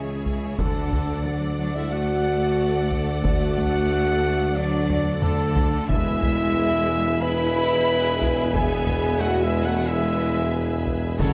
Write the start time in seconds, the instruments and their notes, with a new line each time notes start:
Already playing: tuba C#2, double bass section C#2, cello section C#3, french horn section G#3, viola section G#4 C#5, violin section G#4 E5 G#5, trumpet G#4
0.26 taiko low
0.59 double bass section D2, tuba D2, cello section D3, french horn section A3, trumpet A4, viola section A4 D5, violin section A4 D5 F#5, taiko
0.92 taiko low
1.25 cello section F#3, french horn section D4, trumpet D5, violin section D5
1.58 cello section F#3, french horn section D4, trumpet D5, violin section D5
1.75 cello section G#3, french horn section E4, violin section E5, trumpet E5
1.91 cello section A3, french horn section F#4, violin section F#5, trumpet F#5
2.91 taiko low
3.23 cello section A3, french horn section F#4, trumpet F#5, violin section F#5, taiko
3.57 taiko low
4.56 cello section F#3, french horn section D4, trumpet D5, violin section D5
4.90 taiko low-mid
5.22 cello section D3, french horn section A3, trumpet A4, violin section A4, taiko low-mid
5.56 taiko low
5.88 tuba E1, double bass section E2, cello section G#3, french horn section E4, viola section G#4 B4, trumpet E5, violin section E5 G#5, taiko
6.22 taiko low
7.21 cello section E4, french horn section B4, trumpet B5, violin section B5
8.21 taiko low
8.54 cello section B3, french horn section G#4, trumpet G#5, violin section G#5, taiko
8.87 taiko low
9.19 cello section A3, french horn section F#4, violin section F#5, trumpet F#5
9.41 cello section G#3, french horn section E4, violin section E5, trumpet E5
9.63 cello section A3, violin section F#5, trumpet F#5
9.67 french horn section F#4
9.86 cello section G#3, french horn section E4, violin section E5, trumpet E5
10.86 taiko low
11.19 tuba F#1, double bass section F#2, timpani F#2, cello section C#3, french horn section A3, trumpet A4, viola section A4, violin section A4 C#5 F#5, taiko
11.27 timpani F#2